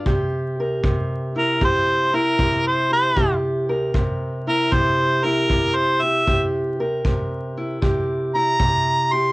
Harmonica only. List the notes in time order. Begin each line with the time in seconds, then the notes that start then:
1.38 A#4
1.64 C5
2.15 A#4
2.67 C5
2.93 C5
4.49 A#4
4.73 C5
5.25 A#4
5.76 C5
6.02 E5
8.35 A#5
9.13 C6